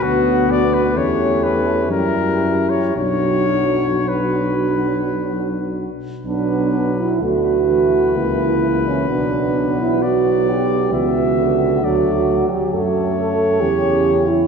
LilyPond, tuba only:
\new Staff \with { instrumentName = "Tuba" } { \clef bass \time 3/4 \key b \minor \tempo 4 = 64 d,4 e,4 fis,4 | b,,2~ b,,8 r8 | b,,4 d,4 cis,4 | b,,2 cis,4 |
d,8 r8 fis,4 e,4 | }